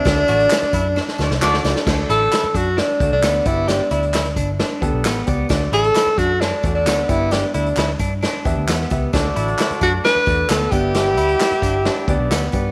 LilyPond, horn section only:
\new Staff \with { instrumentName = "Horn section" } { \time 4/4 \key d \major \tempo 4 = 132 r2 r8 <a d' fis' d''>16 r16 <a d' fis' d''>8. r16 | r1 | r1 | r1 |
r1 | <a d' fis' d''>2. r8 <b e' g' e''>8~ | <b e' g' e''>2.~ <b e' g' e''>8 r8 | }